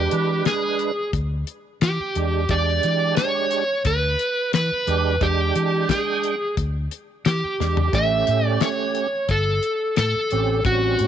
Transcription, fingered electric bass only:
0.12 E3
1.13 D2
1.82 E3
2.00 muted fingered electric bass stroke
2.16 E2
2.49 E2
2.84 E3
3.85 D2
4.54 E3
4.72 muted fingered electric bass stroke
4.87 E2
5.21 E2
5.56 E3
6.57 D2
7.26 E3
7.44 muted fingered electric bass stroke
7.60 E2
7.93 A1
8.28 A2
9.29 G1
9.98 A2
10.16 muted fingered electric bass stroke
10.32 A1
10.65 A1
11.00 A2

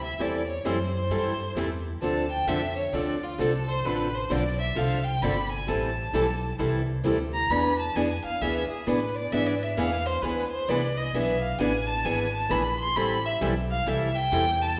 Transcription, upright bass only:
Already playing: D2
0.19 E2
0.64 F#2
1.10 G2
1.55 E2
2.01 D2
2.47 F2
2.93 D2
3.38 C2
3.85 A1
4.30 B1
4.76 C2
5.22 G1
5.68 A1
6.13 B1
6.59 C2
7.04 D2
7.49 E2
7.95 F2
8.24 muted upright bass stroke
8.41 D2
8.71 muted upright bass stroke
8.87 A2
9.32 G#2
9.77 E2
10.22 D2
10.68 C2
11.13 B1
11.59 A1
12.05 G#1
12.49 A#1
12.95 A1
13.41 B1
13.87 C2
14.32 E2

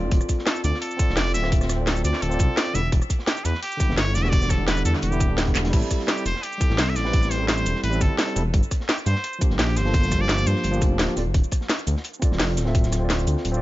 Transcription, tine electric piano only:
Already playing: C4 F4 A4 D5
0.97 C4 F4 A4
1.02 D5
1.42 C4 F4 A4 E5
1.76 C4 F4 A4
1.81 D5
2.29 C4 F4 A4
2.34 D5
2.73 D3 G3 B3 E4
3.77 D3 G3 B3
3.83 E4
4.23 D3 G3 B3 F#4
4.57 D3 G3 B3
4.62 E4
5.11 D3 G3 B3 E4
5.28 D3 G3 B3 D4
5.46 D3 G3 B3 E4
5.70 G3 C4 E4
5.76 A4
6.58 G3 C4 E4
6.63 A4
7.04 G3 C4 E4 B4
7.38 G3 C4 E4
7.43 A4
7.90 G3 C4 E4
7.95 A4
8.35 G3 C4 E4 A4
9.39 F3 A#3 D4
9.44 G4
9.84 F3 A#3 D4 A4
10.18 F3 A#3 D4
10.23 G4
10.71 F3 A#3 D4
10.76 G4
11.15 C4 F4 A4 D5
12.19 C4 F4 A4
12.25 D5
12.65 C4 F4 A4 E5
12.99 C4 F4 A4
13.04 D5
13.52 C4 F4 A4
13.57 D5

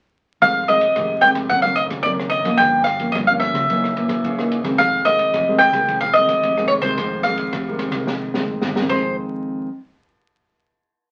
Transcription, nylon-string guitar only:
0.42 F2 D#3 G#3 C4
0.67 D#3 G#3 C4
0.96 C3 D#3 G#3 C4
1.23 D#3 G#3 C4
1.51 F#2 D#3 A3 C4
1.65 D#3 A3 C4
2.05 F#2 D#3 A3 C4
2.46 F3 A#3 C#4
2.60 G2
3.00 F3 A#3 C#4
3.15 G2
3.29 F3 A#3 C#4
3.69 F#2 E3 A#3 D#4
3.96 E3 A#3
4.24 C#3
4.39 E3 A#3 D#4
4.64 D#3 G#3 C4
4.79 F2
5.05 D#3 G#3 C4
5.34 C3
5.48 D#3 G#3 C4
5.74 D#3 G#3 C4
5.89 F2
6.16 D#3 G#3 C4
6.44 C3
6.59 D#3 G#3 C4
6.84 D#3 G#3 C4
6.99 F2
7.25 D#3 G#3 C4
7.54 C3
7.68 D#3 G#3 C4
7.93 D#3 G#3 C4
8.09 F2
8.35 D#3 G#3 C4
8.63 C3
8.78 D#3 G#3 C4
8.90 F2 D#3 G#3 C4

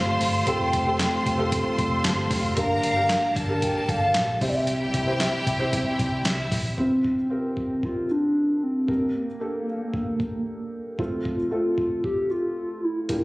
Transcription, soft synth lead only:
Already playing: F5
0.48 G5
2.59 F5
2.84 F5
3.37 A5
3.63 G5
3.90 F5
4.42 E5
4.49 D5
4.56 E5
6.79 C4
7.31 C4
7.85 F4
8.11 D4
8.63 C4
8.90 C4
9.15 A#3
10.99 F4
11.52 F4
12.04 G4
12.31 F4
12.84 E4
13.10 E4

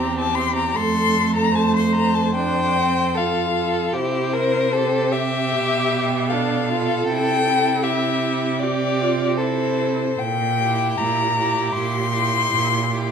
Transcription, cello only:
Already playing: E2
0.77 F2
3.95 C3
5.52 B2
7.07 C3
10.20 A#2
10.99 A#2
11.75 A#2
12.52 A#2

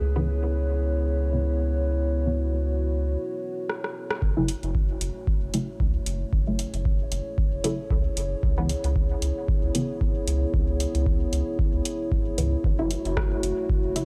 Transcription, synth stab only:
0.16 G#2 C#3 E3 B3
1.33 G#2 C#3 E3 B3
2.26 G#2 C#3 E3 B3
4.37 C#3 F#3 A3 E4
5.54 C#3 F#3 A3 E4
6.47 C#3 F#3 A3 E4
7.64 C#3 F#3 A3 E4
8.58 G#2 C#3 E3 B3
9.75 G#2 C#3 E3 B3
12.38 G#2 C#3 E3 B3
12.79 C#3 F#3 A3 E4
13.96 C#3 F#3 A3 E4

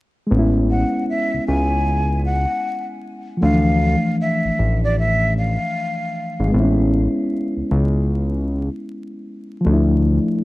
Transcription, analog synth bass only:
0.31 A1
1.34 C#2
1.48 C#2
3.43 D2
4.45 A1
4.59 A1
6.40 G#1
6.54 A1
7.57 C#2
7.71 C#2
9.66 D2

